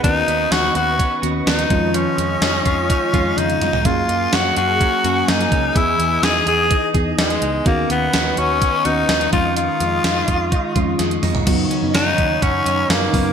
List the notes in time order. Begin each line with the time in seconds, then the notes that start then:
Already playing: D#4
0.03 D#2 D#3 B3 C#4 D#4 F#4 B4 D#5 C#6, kick, closed hi-hat
0.28 D#2 B3, closed hi-hat
0.51 D#2 C#4 F#4, snare, closed hi-hat
0.75 D#2 F#4, closed hi-hat
0.98 C#4, kick, closed hi-hat
1.22 D#2 D#3 B3 C#4 F#4, closed hi-hat
1.46 D#2 B3 D#4, snare, closed hi-hat
1.59 closed hi-hat
1.70 F2 D#3 F3 G#3 C#4 F4 D#5, kick, closed hi-hat
1.94 F3 C#4, closed hi-hat
2.17 F2 G#3, closed hi-hat
2.41 F2 D#4, snare, closed hi-hat
2.65 F2 F4, kick, closed hi-hat
2.89 D#4, kick, closed hi-hat
3.13 F2 D#3 G#3 C#4 F4, kick, closed hi-hat
3.37 F2 G#3 D#4, closed hi-hat, high tom
3.50 closed hi-hat
3.61 F2 D#4, closed hi-hat, mid tom
3.73 floor tom
3.85 F#2 F#3 A#3 C#4 F4 G#4 G#5 A#5, kick, closed hi-hat
4.08 F#2 A#3, closed hi-hat
4.33 F#2 C#4 F#4, snare, closed hi-hat
4.56 F#2 F#4 G#4, closed hi-hat
4.81 C#4, kick, closed hi-hat
5.04 F#2 F#3 A#3 C#4 F#4, closed hi-hat
5.16 G#4
5.28 F#2 A#3 D#4, snare, closed hi-hat
5.41 closed hi-hat
5.52 C#2 C#4, kick, closed hi-hat
5.75 E2 E3 B3 E4 G#4 D#5 D#6, kick, closed hi-hat
5.99 E2 B3, closed hi-hat
6.22 E2 D#4 G#4, snare, closed hi-hat
6.47 E2 G#4, closed hi-hat
6.71 D#4, kick, closed hi-hat
6.94 E2 E3 B3 D#4 G#4, kick, closed hi-hat
7.18 E2 G#3 B3, snare, closed hi-hat
7.30 closed hi-hat
7.42 C#2 D#4, closed hi-hat
7.65 D#2 D#3 A#3 B3 C#4 F#4 B4 D#5 C#6, kick, closed hi-hat
7.90 D#2 B3, closed hi-hat
8.13 D#2 C#4, snare, closed hi-hat
8.37 D#2 C#4 F#4, closed hi-hat
8.61 C#4, kick, closed hi-hat
8.84 D#2 D#3 B3 C#4 D#4 F#4, closed hi-hat
9.09 D#2 B3, snare, closed hi-hat
9.21 closed hi-hat
9.32 F2 D#3 G#3 C#4 F4, kick, closed hi-hat
9.56 D#3 F4, closed hi-hat
9.80 F2 G#3, closed hi-hat
10.04 F2 D#4, snare, closed hi-hat
10.28 F2 F4, kick, closed hi-hat
10.52 D#4, kick, closed hi-hat
10.75 F2 D#3 G#3 C#4 F4, kick, closed hi-hat
10.99 F2 G#3, snare, closed hi-hat
11.11 closed hi-hat
11.23 F2 D#4, mid tom, open hi-hat
11.35 floor tom
11.46 F#2 C#3 D#3 F#3 B3 D#4 F#4 C#5 B5, kick, closed hi-hat, crash
11.70 C#4, closed hi-hat
11.82 F#2 C#3 F#3 B3 D#4
11.94 F#2 D#4 F#4, snare, closed hi-hat
12.18 D#2 C#4, kick, closed hi-hat
12.42 F#2 C#4 F#4, kick, closed hi-hat
12.66 F#2 C#4, closed hi-hat
12.89 F#2 A#3 B3, snare, closed hi-hat
13.13 F#2 C#3 F#3 B3 C#4 D#4, kick, open hi-hat